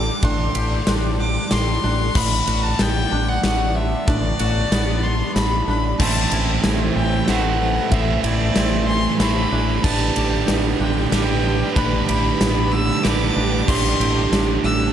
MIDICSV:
0, 0, Header, 1, 8, 480
1, 0, Start_track
1, 0, Tempo, 640342
1, 172, Time_signature, 3, 2, 24, 8
1, 11191, End_track
2, 0, Start_track
2, 0, Title_t, "Violin"
2, 0, Program_c, 0, 40
2, 0, Note_on_c, 0, 86, 101
2, 183, Note_on_c, 0, 84, 97
2, 194, Note_off_c, 0, 86, 0
2, 658, Note_off_c, 0, 84, 0
2, 901, Note_on_c, 0, 86, 104
2, 1144, Note_on_c, 0, 84, 102
2, 1155, Note_off_c, 0, 86, 0
2, 1614, Note_on_c, 0, 83, 117
2, 1625, Note_off_c, 0, 84, 0
2, 1979, Note_on_c, 0, 81, 106
2, 1991, Note_off_c, 0, 83, 0
2, 2111, Note_on_c, 0, 79, 114
2, 2122, Note_off_c, 0, 81, 0
2, 2463, Note_on_c, 0, 78, 112
2, 2474, Note_off_c, 0, 79, 0
2, 2579, Note_off_c, 0, 78, 0
2, 2586, Note_on_c, 0, 78, 98
2, 2818, Note_on_c, 0, 76, 94
2, 2829, Note_off_c, 0, 78, 0
2, 3057, Note_on_c, 0, 74, 104
2, 3068, Note_off_c, 0, 76, 0
2, 3776, Note_on_c, 0, 84, 93
2, 3787, Note_off_c, 0, 74, 0
2, 4007, Note_off_c, 0, 84, 0
2, 4012, Note_on_c, 0, 83, 99
2, 4237, Note_off_c, 0, 83, 0
2, 4259, Note_on_c, 0, 83, 96
2, 4481, Note_off_c, 0, 83, 0
2, 4498, Note_on_c, 0, 81, 95
2, 4948, Note_off_c, 0, 81, 0
2, 5220, Note_on_c, 0, 79, 93
2, 5460, Note_on_c, 0, 78, 90
2, 5471, Note_off_c, 0, 79, 0
2, 5930, Note_on_c, 0, 76, 95
2, 5942, Note_off_c, 0, 78, 0
2, 6167, Note_off_c, 0, 76, 0
2, 6171, Note_on_c, 0, 74, 99
2, 6624, Note_off_c, 0, 74, 0
2, 6649, Note_on_c, 0, 84, 113
2, 6876, Note_off_c, 0, 84, 0
2, 6889, Note_on_c, 0, 83, 115
2, 7372, Note_on_c, 0, 81, 106
2, 7383, Note_off_c, 0, 83, 0
2, 7854, Note_off_c, 0, 81, 0
2, 8095, Note_on_c, 0, 79, 81
2, 8319, Note_off_c, 0, 79, 0
2, 8334, Note_on_c, 0, 79, 93
2, 8785, Note_off_c, 0, 79, 0
2, 8814, Note_on_c, 0, 83, 101
2, 9038, Note_off_c, 0, 83, 0
2, 9056, Note_on_c, 0, 83, 98
2, 9535, Note_on_c, 0, 88, 112
2, 9547, Note_off_c, 0, 83, 0
2, 9774, Note_on_c, 0, 86, 106
2, 9785, Note_off_c, 0, 88, 0
2, 10255, Note_on_c, 0, 84, 96
2, 10267, Note_off_c, 0, 86, 0
2, 10734, Note_off_c, 0, 84, 0
2, 10978, Note_on_c, 0, 88, 115
2, 11191, Note_off_c, 0, 88, 0
2, 11191, End_track
3, 0, Start_track
3, 0, Title_t, "Analog synth pad"
3, 0, Program_c, 1, 89
3, 0, Note_on_c, 1, 69, 88
3, 0, Note_on_c, 1, 74, 78
3, 0, Note_on_c, 1, 79, 79
3, 0, Note_on_c, 1, 86, 99
3, 1583, Note_off_c, 1, 69, 0
3, 1583, Note_off_c, 1, 79, 0
3, 1620, Note_on_c, 1, 59, 89
3, 4465, Note_off_c, 1, 86, 0
3, 4466, Note_off_c, 1, 74, 0
3, 4471, Note_off_c, 1, 59, 0
3, 4485, Note_on_c, 1, 76, 75
3, 4486, Note_on_c, 1, 69, 93
3, 4486, Note_on_c, 1, 84, 91
3, 4487, Note_on_c, 1, 72, 83
3, 5917, Note_off_c, 1, 84, 0
3, 5937, Note_on_c, 1, 86, 95
3, 7342, Note_off_c, 1, 76, 0
3, 7343, Note_off_c, 1, 69, 0
3, 7343, Note_off_c, 1, 72, 0
3, 7376, Note_on_c, 1, 74, 87
3, 7377, Note_on_c, 1, 79, 87
3, 7379, Note_on_c, 1, 71, 90
3, 8802, Note_off_c, 1, 79, 0
3, 8821, Note_on_c, 1, 81, 74
3, 10226, Note_off_c, 1, 71, 0
3, 10242, Note_off_c, 1, 81, 0
3, 10260, Note_on_c, 1, 79, 82
3, 10261, Note_on_c, 1, 69, 82
3, 11191, Note_off_c, 1, 69, 0
3, 11191, Note_off_c, 1, 74, 0
3, 11191, Note_off_c, 1, 79, 0
3, 11191, Note_off_c, 1, 86, 0
3, 11191, End_track
4, 0, Start_track
4, 0, Title_t, "Kora"
4, 0, Program_c, 2, 46
4, 0, Note_on_c, 2, 60, 90
4, 0, Note_on_c, 2, 62, 78
4, 77, Note_off_c, 2, 60, 0
4, 166, Note_off_c, 2, 62, 0
4, 169, Note_on_c, 2, 62, 92
4, 653, Note_on_c, 2, 60, 77
4, 1374, Note_off_c, 2, 62, 0
4, 1377, Note_on_c, 2, 62, 93
4, 1614, Note_on_c, 2, 59, 92
4, 1659, Note_off_c, 2, 60, 0
4, 2330, Note_off_c, 2, 62, 0
4, 2333, Note_on_c, 2, 62, 88
4, 3011, Note_off_c, 2, 59, 0
4, 3053, Note_off_c, 2, 62, 0
4, 3056, Note_on_c, 2, 62, 97
4, 3535, Note_on_c, 2, 59, 73
4, 4254, Note_off_c, 2, 62, 0
4, 4257, Note_on_c, 2, 62, 84
4, 4495, Note_on_c, 2, 60, 85
4, 4540, Note_off_c, 2, 59, 0
4, 5220, Note_on_c, 2, 64, 79
4, 5516, Note_off_c, 2, 62, 0
4, 5845, Note_off_c, 2, 60, 0
4, 5932, Note_off_c, 2, 64, 0
4, 5935, Note_on_c, 2, 64, 90
4, 6419, Note_on_c, 2, 60, 75
4, 7110, Note_off_c, 2, 64, 0
4, 7137, Note_on_c, 2, 62, 96
4, 7378, Note_on_c, 2, 59, 94
4, 7423, Note_off_c, 2, 60, 0
4, 8097, Note_off_c, 2, 62, 0
4, 8100, Note_on_c, 2, 62, 88
4, 8775, Note_off_c, 2, 59, 0
4, 8810, Note_off_c, 2, 62, 0
4, 8813, Note_on_c, 2, 62, 97
4, 9298, Note_on_c, 2, 59, 76
4, 10009, Note_off_c, 2, 62, 0
4, 10012, Note_on_c, 2, 62, 85
4, 10254, Note_on_c, 2, 60, 85
4, 10299, Note_off_c, 2, 59, 0
4, 10971, Note_off_c, 2, 62, 0
4, 10974, Note_on_c, 2, 62, 81
4, 11191, Note_off_c, 2, 60, 0
4, 11191, Note_off_c, 2, 62, 0
4, 11191, End_track
5, 0, Start_track
5, 0, Title_t, "Distorted electric guitar"
5, 0, Program_c, 3, 30
5, 4492, Note_on_c, 3, 45, 90
5, 4498, Note_on_c, 3, 52, 100
5, 4501, Note_on_c, 3, 57, 88
5, 4504, Note_on_c, 3, 60, 90
5, 4506, Note_on_c, 3, 64, 104
5, 4509, Note_on_c, 3, 72, 98
5, 5440, Note_off_c, 3, 45, 0
5, 5443, Note_off_c, 3, 52, 0
5, 5445, Note_off_c, 3, 57, 0
5, 5446, Note_off_c, 3, 60, 0
5, 5447, Note_off_c, 3, 64, 0
5, 5449, Note_off_c, 3, 72, 0
5, 5455, Note_on_c, 3, 45, 93
5, 5460, Note_on_c, 3, 52, 88
5, 5463, Note_on_c, 3, 57, 83
5, 5465, Note_on_c, 3, 60, 94
5, 5467, Note_on_c, 3, 64, 94
5, 5472, Note_on_c, 3, 72, 86
5, 5922, Note_off_c, 3, 45, 0
5, 5924, Note_off_c, 3, 52, 0
5, 5926, Note_off_c, 3, 57, 0
5, 5927, Note_off_c, 3, 60, 0
5, 5928, Note_off_c, 3, 64, 0
5, 5930, Note_off_c, 3, 72, 0
5, 5930, Note_on_c, 3, 45, 92
5, 5934, Note_on_c, 3, 52, 97
5, 5936, Note_on_c, 3, 57, 90
5, 5940, Note_on_c, 3, 60, 93
5, 5945, Note_on_c, 3, 64, 105
5, 5948, Note_on_c, 3, 72, 111
5, 6879, Note_off_c, 3, 45, 0
5, 6881, Note_off_c, 3, 52, 0
5, 6882, Note_off_c, 3, 57, 0
5, 6884, Note_off_c, 3, 60, 0
5, 6886, Note_off_c, 3, 64, 0
5, 6888, Note_off_c, 3, 72, 0
5, 6888, Note_on_c, 3, 45, 86
5, 6892, Note_on_c, 3, 52, 92
5, 6895, Note_on_c, 3, 57, 90
5, 6899, Note_on_c, 3, 60, 94
5, 6901, Note_on_c, 3, 64, 99
5, 6904, Note_on_c, 3, 72, 94
5, 7358, Note_off_c, 3, 45, 0
5, 7360, Note_off_c, 3, 52, 0
5, 7362, Note_off_c, 3, 57, 0
5, 7364, Note_off_c, 3, 60, 0
5, 7364, Note_off_c, 3, 64, 0
5, 7366, Note_off_c, 3, 72, 0
5, 7372, Note_on_c, 3, 45, 102
5, 7373, Note_on_c, 3, 50, 99
5, 7375, Note_on_c, 3, 55, 103
5, 7381, Note_on_c, 3, 62, 100
5, 7386, Note_on_c, 3, 67, 116
5, 7387, Note_on_c, 3, 71, 113
5, 8317, Note_off_c, 3, 45, 0
5, 8320, Note_off_c, 3, 50, 0
5, 8326, Note_on_c, 3, 45, 84
5, 8327, Note_off_c, 3, 71, 0
5, 8330, Note_on_c, 3, 50, 86
5, 8331, Note_off_c, 3, 55, 0
5, 8333, Note_off_c, 3, 62, 0
5, 8334, Note_on_c, 3, 55, 85
5, 8336, Note_off_c, 3, 67, 0
5, 8336, Note_on_c, 3, 62, 93
5, 8339, Note_on_c, 3, 67, 101
5, 8343, Note_on_c, 3, 71, 89
5, 8796, Note_off_c, 3, 45, 0
5, 8798, Note_off_c, 3, 50, 0
5, 8805, Note_off_c, 3, 71, 0
5, 8810, Note_on_c, 3, 45, 102
5, 8815, Note_on_c, 3, 50, 98
5, 8816, Note_off_c, 3, 55, 0
5, 8819, Note_off_c, 3, 62, 0
5, 8819, Note_on_c, 3, 55, 97
5, 8822, Note_off_c, 3, 67, 0
5, 8822, Note_on_c, 3, 62, 97
5, 8825, Note_on_c, 3, 67, 110
5, 8827, Note_on_c, 3, 71, 97
5, 9758, Note_off_c, 3, 45, 0
5, 9760, Note_off_c, 3, 50, 0
5, 9766, Note_off_c, 3, 71, 0
5, 9769, Note_on_c, 3, 45, 91
5, 9771, Note_on_c, 3, 50, 82
5, 9772, Note_off_c, 3, 55, 0
5, 9775, Note_on_c, 3, 55, 95
5, 9776, Note_off_c, 3, 62, 0
5, 9779, Note_off_c, 3, 67, 0
5, 9779, Note_on_c, 3, 62, 102
5, 9782, Note_on_c, 3, 67, 93
5, 9783, Note_on_c, 3, 71, 96
5, 10237, Note_off_c, 3, 45, 0
5, 10238, Note_off_c, 3, 50, 0
5, 10244, Note_off_c, 3, 71, 0
5, 10249, Note_on_c, 3, 45, 89
5, 10253, Note_on_c, 3, 50, 84
5, 10254, Note_off_c, 3, 55, 0
5, 10257, Note_off_c, 3, 62, 0
5, 10257, Note_on_c, 3, 55, 103
5, 10260, Note_off_c, 3, 67, 0
5, 10260, Note_on_c, 3, 62, 95
5, 10263, Note_on_c, 3, 67, 97
5, 11191, Note_off_c, 3, 45, 0
5, 11191, Note_off_c, 3, 50, 0
5, 11191, Note_off_c, 3, 55, 0
5, 11191, Note_off_c, 3, 62, 0
5, 11191, Note_off_c, 3, 67, 0
5, 11191, End_track
6, 0, Start_track
6, 0, Title_t, "Clean electric guitar"
6, 0, Program_c, 4, 27
6, 0, Note_on_c, 4, 50, 71
6, 0, Note_on_c, 4, 55, 79
6, 0, Note_on_c, 4, 62, 77
6, 0, Note_on_c, 4, 67, 87
6, 172, Note_on_c, 4, 45, 78
6, 173, Note_off_c, 4, 67, 0
6, 411, Note_on_c, 4, 67, 80
6, 653, Note_off_c, 4, 62, 0
6, 656, Note_on_c, 4, 62, 77
6, 881, Note_off_c, 4, 50, 0
6, 890, Note_on_c, 4, 50, 76
6, 894, Note_off_c, 4, 55, 0
6, 1132, Note_on_c, 4, 55, 71
6, 1362, Note_off_c, 4, 50, 0
6, 1371, Note_on_c, 4, 50, 73
6, 1373, Note_off_c, 4, 45, 0
6, 1612, Note_off_c, 4, 50, 0
6, 1612, Note_on_c, 4, 45, 86
6, 1613, Note_off_c, 4, 55, 0
6, 1613, Note_off_c, 4, 67, 0
6, 1853, Note_on_c, 4, 66, 83
6, 2094, Note_off_c, 4, 62, 0
6, 2097, Note_on_c, 4, 59, 83
6, 2334, Note_on_c, 4, 50, 74
6, 2574, Note_on_c, 4, 57, 71
6, 2806, Note_off_c, 4, 50, 0
6, 2814, Note_off_c, 4, 45, 0
6, 2815, Note_on_c, 4, 50, 69
6, 3055, Note_off_c, 4, 66, 0
6, 3057, Note_on_c, 4, 45, 79
6, 3296, Note_on_c, 4, 66, 81
6, 3297, Note_off_c, 4, 59, 0
6, 3537, Note_on_c, 4, 59, 77
6, 3770, Note_off_c, 4, 50, 0
6, 3775, Note_off_c, 4, 57, 0
6, 3779, Note_on_c, 4, 50, 65
6, 4020, Note_on_c, 4, 57, 70
6, 4250, Note_off_c, 4, 50, 0
6, 4257, Note_off_c, 4, 45, 0
6, 4259, Note_on_c, 4, 50, 77
6, 4496, Note_off_c, 4, 66, 0
6, 4497, Note_off_c, 4, 59, 0
6, 4497, Note_on_c, 4, 45, 73
6, 4498, Note_off_c, 4, 50, 0
6, 4498, Note_off_c, 4, 57, 0
6, 4737, Note_on_c, 4, 64, 80
6, 4976, Note_on_c, 4, 60, 77
6, 5215, Note_on_c, 4, 52, 68
6, 5456, Note_on_c, 4, 57, 71
6, 5688, Note_off_c, 4, 52, 0
6, 5697, Note_off_c, 4, 45, 0
6, 5697, Note_on_c, 4, 52, 73
6, 5937, Note_off_c, 4, 64, 0
6, 5939, Note_on_c, 4, 45, 83
6, 6177, Note_off_c, 4, 60, 0
6, 6179, Note_on_c, 4, 64, 80
6, 6415, Note_on_c, 4, 60, 75
6, 6647, Note_off_c, 4, 52, 0
6, 6656, Note_on_c, 4, 52, 74
6, 6657, Note_off_c, 4, 57, 0
6, 6898, Note_on_c, 4, 57, 81
6, 7128, Note_off_c, 4, 52, 0
6, 7137, Note_on_c, 4, 52, 77
6, 7138, Note_off_c, 4, 45, 0
6, 7376, Note_off_c, 4, 60, 0
6, 7376, Note_on_c, 4, 45, 81
6, 7377, Note_off_c, 4, 52, 0
6, 7377, Note_off_c, 4, 57, 0
6, 7378, Note_off_c, 4, 64, 0
6, 7617, Note_on_c, 4, 67, 79
6, 7854, Note_on_c, 4, 59, 79
6, 8096, Note_on_c, 4, 50, 67
6, 8332, Note_on_c, 4, 55, 71
6, 8565, Note_off_c, 4, 50, 0
6, 8574, Note_on_c, 4, 50, 78
6, 8576, Note_off_c, 4, 45, 0
6, 8819, Note_on_c, 4, 45, 79
6, 8841, Note_off_c, 4, 67, 0
6, 9054, Note_off_c, 4, 59, 0
6, 9055, Note_on_c, 4, 67, 88
6, 9294, Note_on_c, 4, 59, 73
6, 9528, Note_off_c, 4, 50, 0
6, 9537, Note_on_c, 4, 50, 79
6, 9777, Note_off_c, 4, 55, 0
6, 9779, Note_on_c, 4, 55, 68
6, 10007, Note_off_c, 4, 50, 0
6, 10016, Note_off_c, 4, 45, 0
6, 10016, Note_on_c, 4, 50, 77
6, 10253, Note_off_c, 4, 59, 0
6, 10255, Note_off_c, 4, 50, 0
6, 10255, Note_on_c, 4, 45, 78
6, 10278, Note_off_c, 4, 55, 0
6, 10278, Note_off_c, 4, 67, 0
6, 10495, Note_on_c, 4, 67, 82
6, 10735, Note_on_c, 4, 62, 76
6, 10971, Note_on_c, 4, 50, 65
6, 11191, Note_off_c, 4, 45, 0
6, 11191, Note_off_c, 4, 50, 0
6, 11191, Note_off_c, 4, 62, 0
6, 11191, Note_off_c, 4, 67, 0
6, 11191, End_track
7, 0, Start_track
7, 0, Title_t, "Fingered electric bass"
7, 0, Program_c, 5, 33
7, 172, Note_on_c, 5, 33, 100
7, 359, Note_off_c, 5, 33, 0
7, 415, Note_on_c, 5, 33, 104
7, 601, Note_off_c, 5, 33, 0
7, 654, Note_on_c, 5, 33, 100
7, 1027, Note_off_c, 5, 33, 0
7, 1138, Note_on_c, 5, 33, 100
7, 1323, Note_off_c, 5, 33, 0
7, 1378, Note_on_c, 5, 33, 99
7, 1563, Note_off_c, 5, 33, 0
7, 1616, Note_on_c, 5, 33, 101
7, 1802, Note_off_c, 5, 33, 0
7, 1854, Note_on_c, 5, 33, 106
7, 2041, Note_off_c, 5, 33, 0
7, 2096, Note_on_c, 5, 33, 91
7, 2282, Note_off_c, 5, 33, 0
7, 2339, Note_on_c, 5, 33, 92
7, 2524, Note_off_c, 5, 33, 0
7, 2576, Note_on_c, 5, 33, 100
7, 2949, Note_off_c, 5, 33, 0
7, 3060, Note_on_c, 5, 33, 97
7, 3245, Note_off_c, 5, 33, 0
7, 3299, Note_on_c, 5, 33, 108
7, 3484, Note_off_c, 5, 33, 0
7, 3535, Note_on_c, 5, 33, 93
7, 3909, Note_off_c, 5, 33, 0
7, 4015, Note_on_c, 5, 33, 90
7, 4202, Note_off_c, 5, 33, 0
7, 4253, Note_on_c, 5, 33, 101
7, 4441, Note_off_c, 5, 33, 0
7, 4498, Note_on_c, 5, 33, 97
7, 4684, Note_off_c, 5, 33, 0
7, 4736, Note_on_c, 5, 33, 102
7, 4923, Note_off_c, 5, 33, 0
7, 4975, Note_on_c, 5, 33, 96
7, 5163, Note_off_c, 5, 33, 0
7, 5216, Note_on_c, 5, 33, 93
7, 5403, Note_off_c, 5, 33, 0
7, 5459, Note_on_c, 5, 33, 97
7, 5832, Note_off_c, 5, 33, 0
7, 5937, Note_on_c, 5, 33, 102
7, 6124, Note_off_c, 5, 33, 0
7, 6175, Note_on_c, 5, 33, 105
7, 6362, Note_off_c, 5, 33, 0
7, 6415, Note_on_c, 5, 33, 93
7, 6789, Note_off_c, 5, 33, 0
7, 6894, Note_on_c, 5, 33, 96
7, 7082, Note_off_c, 5, 33, 0
7, 7137, Note_on_c, 5, 33, 97
7, 7324, Note_off_c, 5, 33, 0
7, 7378, Note_on_c, 5, 33, 97
7, 7565, Note_off_c, 5, 33, 0
7, 7622, Note_on_c, 5, 33, 103
7, 7807, Note_off_c, 5, 33, 0
7, 7856, Note_on_c, 5, 33, 100
7, 8043, Note_off_c, 5, 33, 0
7, 8093, Note_on_c, 5, 33, 100
7, 8281, Note_off_c, 5, 33, 0
7, 8334, Note_on_c, 5, 33, 102
7, 8708, Note_off_c, 5, 33, 0
7, 8820, Note_on_c, 5, 33, 96
7, 9005, Note_off_c, 5, 33, 0
7, 9060, Note_on_c, 5, 33, 100
7, 9245, Note_off_c, 5, 33, 0
7, 9299, Note_on_c, 5, 33, 101
7, 9671, Note_off_c, 5, 33, 0
7, 9782, Note_on_c, 5, 33, 95
7, 9966, Note_off_c, 5, 33, 0
7, 10016, Note_on_c, 5, 33, 101
7, 10202, Note_off_c, 5, 33, 0
7, 10259, Note_on_c, 5, 33, 95
7, 10443, Note_off_c, 5, 33, 0
7, 10493, Note_on_c, 5, 33, 103
7, 10680, Note_off_c, 5, 33, 0
7, 10732, Note_on_c, 5, 33, 96
7, 10919, Note_off_c, 5, 33, 0
7, 10973, Note_on_c, 5, 33, 93
7, 11159, Note_off_c, 5, 33, 0
7, 11191, End_track
8, 0, Start_track
8, 0, Title_t, "Drums"
8, 169, Note_on_c, 9, 51, 82
8, 171, Note_on_c, 9, 36, 113
8, 244, Note_off_c, 9, 51, 0
8, 246, Note_off_c, 9, 36, 0
8, 412, Note_on_c, 9, 51, 89
8, 487, Note_off_c, 9, 51, 0
8, 651, Note_on_c, 9, 38, 100
8, 651, Note_on_c, 9, 51, 88
8, 726, Note_off_c, 9, 38, 0
8, 726, Note_off_c, 9, 51, 0
8, 1130, Note_on_c, 9, 38, 82
8, 1130, Note_on_c, 9, 51, 80
8, 1205, Note_off_c, 9, 38, 0
8, 1205, Note_off_c, 9, 51, 0
8, 1612, Note_on_c, 9, 49, 115
8, 1614, Note_on_c, 9, 36, 116
8, 1687, Note_off_c, 9, 49, 0
8, 1689, Note_off_c, 9, 36, 0
8, 1854, Note_on_c, 9, 51, 84
8, 1929, Note_off_c, 9, 51, 0
8, 2093, Note_on_c, 9, 38, 95
8, 2093, Note_on_c, 9, 51, 83
8, 2168, Note_off_c, 9, 38, 0
8, 2168, Note_off_c, 9, 51, 0
8, 2575, Note_on_c, 9, 38, 75
8, 2575, Note_on_c, 9, 51, 77
8, 2650, Note_off_c, 9, 38, 0
8, 2650, Note_off_c, 9, 51, 0
8, 3056, Note_on_c, 9, 51, 77
8, 3057, Note_on_c, 9, 36, 121
8, 3131, Note_off_c, 9, 51, 0
8, 3132, Note_off_c, 9, 36, 0
8, 3294, Note_on_c, 9, 51, 91
8, 3368, Note_off_c, 9, 51, 0
8, 3538, Note_on_c, 9, 38, 100
8, 3538, Note_on_c, 9, 51, 90
8, 3613, Note_off_c, 9, 38, 0
8, 3613, Note_off_c, 9, 51, 0
8, 4017, Note_on_c, 9, 38, 79
8, 4017, Note_on_c, 9, 51, 71
8, 4092, Note_off_c, 9, 38, 0
8, 4092, Note_off_c, 9, 51, 0
8, 4496, Note_on_c, 9, 36, 105
8, 4496, Note_on_c, 9, 49, 114
8, 4571, Note_off_c, 9, 36, 0
8, 4571, Note_off_c, 9, 49, 0
8, 4734, Note_on_c, 9, 51, 91
8, 4809, Note_off_c, 9, 51, 0
8, 4974, Note_on_c, 9, 38, 98
8, 4974, Note_on_c, 9, 51, 84
8, 5049, Note_off_c, 9, 38, 0
8, 5049, Note_off_c, 9, 51, 0
8, 5455, Note_on_c, 9, 38, 75
8, 5455, Note_on_c, 9, 51, 69
8, 5530, Note_off_c, 9, 38, 0
8, 5530, Note_off_c, 9, 51, 0
8, 5933, Note_on_c, 9, 51, 77
8, 5935, Note_on_c, 9, 36, 112
8, 6008, Note_off_c, 9, 51, 0
8, 6010, Note_off_c, 9, 36, 0
8, 6176, Note_on_c, 9, 51, 78
8, 6251, Note_off_c, 9, 51, 0
8, 6414, Note_on_c, 9, 38, 99
8, 6414, Note_on_c, 9, 51, 86
8, 6489, Note_off_c, 9, 38, 0
8, 6489, Note_off_c, 9, 51, 0
8, 6896, Note_on_c, 9, 38, 87
8, 6896, Note_on_c, 9, 51, 80
8, 6971, Note_off_c, 9, 38, 0
8, 6971, Note_off_c, 9, 51, 0
8, 7377, Note_on_c, 9, 36, 124
8, 7377, Note_on_c, 9, 57, 110
8, 7452, Note_off_c, 9, 36, 0
8, 7452, Note_off_c, 9, 57, 0
8, 7615, Note_on_c, 9, 51, 93
8, 7690, Note_off_c, 9, 51, 0
8, 7856, Note_on_c, 9, 38, 97
8, 7856, Note_on_c, 9, 51, 94
8, 7931, Note_off_c, 9, 38, 0
8, 7931, Note_off_c, 9, 51, 0
8, 8338, Note_on_c, 9, 38, 84
8, 8338, Note_on_c, 9, 51, 88
8, 8413, Note_off_c, 9, 38, 0
8, 8413, Note_off_c, 9, 51, 0
8, 8817, Note_on_c, 9, 36, 117
8, 8819, Note_on_c, 9, 51, 92
8, 8892, Note_off_c, 9, 36, 0
8, 8894, Note_off_c, 9, 51, 0
8, 9060, Note_on_c, 9, 51, 86
8, 9135, Note_off_c, 9, 51, 0
8, 9301, Note_on_c, 9, 38, 97
8, 9301, Note_on_c, 9, 51, 91
8, 9376, Note_off_c, 9, 38, 0
8, 9376, Note_off_c, 9, 51, 0
8, 9779, Note_on_c, 9, 38, 90
8, 9779, Note_on_c, 9, 51, 76
8, 9854, Note_off_c, 9, 38, 0
8, 9854, Note_off_c, 9, 51, 0
8, 10256, Note_on_c, 9, 36, 121
8, 10260, Note_on_c, 9, 49, 116
8, 10331, Note_off_c, 9, 36, 0
8, 10335, Note_off_c, 9, 49, 0
8, 10502, Note_on_c, 9, 51, 78
8, 10576, Note_off_c, 9, 51, 0
8, 10740, Note_on_c, 9, 38, 99
8, 10740, Note_on_c, 9, 51, 82
8, 10815, Note_off_c, 9, 38, 0
8, 10815, Note_off_c, 9, 51, 0
8, 11191, End_track
0, 0, End_of_file